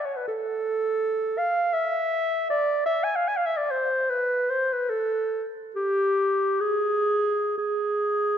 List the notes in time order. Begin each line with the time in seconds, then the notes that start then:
0.06 C#5
0.16 B4
0.28 A4
1.38 F5
1.73 E5
2.50 D5
2.86 E5
3.04 G#5
3.16 F5
3.28 G#5
3.37 F5
3.46 E5
3.57 D5
3.71 C5
4.10 B4
4.50 C5
4.73 B4
4.90 A4
5.76 G4
6.60 G#4
7.58 G#4